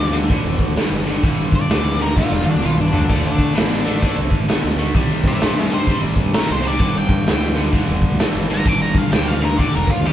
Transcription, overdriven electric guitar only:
0.12 G2 D3
0.29 G2 D3
0.77 G2 E3
1.05 G2 D3
1.23 G2 D3
1.70 G2 E3
1.99 G2 D3
2.16 G2 D3
2.62 G2 E3
2.92 G2 D3
3.09 D3 A3
3.55 D3 B3
3.85 D3 A3
4.02 D3 A3
4.48 D3 B3
4.78 D3 A3
4.95 C3 G3
5.42 C3 A3
5.71 C3 G3
5.88 C3 G3
6.34 C3 A3
6.63 C3 G3
6.80 G2 D3
7.28 G2 E3
7.55 G2 D3
7.73 G2 D3
8.20 G2 E3
8.50 G2 D3
8.66 G2 D3
9.13 G2 E3
9.42 G2 D3
9.59 G2 D3
10.05 G2 E3

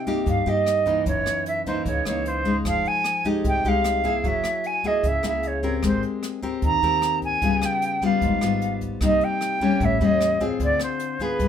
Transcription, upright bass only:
0.27 G2
0.46 G2
1.06 F#1
1.86 C#2
2.05 C#2
2.65 F1
3.44 C2
3.65 C2
4.24 F#1
5.03 C#2
5.24 C#2
5.83 G#1
6.62 D#2
6.82 D#2
7.42 C#2
8.22 G#1
8.41 G#1
9.01 C2
9.80 A1
10.00 E2
10.60 D2
11.39 G1

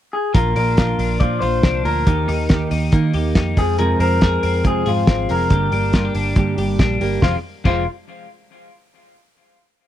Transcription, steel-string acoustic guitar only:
0.34 A#2 F3 A#3 D4 F4
0.55 A#3 D4 F4
0.77 F3 A#3 D4 F4
1.20 A#2 F3 A#3 D4 F4
1.42 A#3 D4 F4
1.85 A#3 D4 F4
2.06 D#3 A#3 D#4 G4
2.28 A#3 D#4 G4
2.49 D#3 A#3 D#4 G4
2.92 D#3 A#3 D#4 G4
3.13 A#3 D#4 G4
3.56 F3 G#3 C4 G#4
3.78 F2 C3 F3 G#3 C4 G#4
4.21 F3 G#3 C4 G#4
4.64 F2 C3 F3 G#3 C4 G#4
4.85 F3 G#3 C4 G#4
5.28 F3 G#3 C4 G#4
5.50 G2 D3 G3 A#3 D4 G4
5.71 G3 A#3 G4
5.93 G3 A#3 D4 G4
6.36 G2 D3 G3 A#3 D4 G4
6.57 G3 A#3 D4 G4
7.00 G3 A#3 D4 G4
7.21 F2 C3 F3 G#3 C4 F4
7.65 F2 C3 F3 G#3 C4 F4

